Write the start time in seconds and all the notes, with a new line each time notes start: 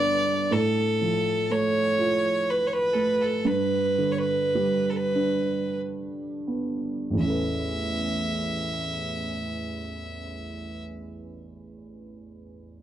Already playing: G1 G2 B3 D4 D5
0.51 A2 A4
1.01 F3
1.50 A3 C#5
1.98 F4
2.50 B4
2.67 C#5
2.73 B4
2.93 A3 A4 B4
3.21 A4
3.45 G2 B4
3.98 D3
4.12 C#5
4.18 B4
4.55 G3
4.90 A4
4.96 B4
5.15 D4
6.48 B3
7.10 A1 E2
7.17 E3 E5
7.22 C#4 A4
7.29 B4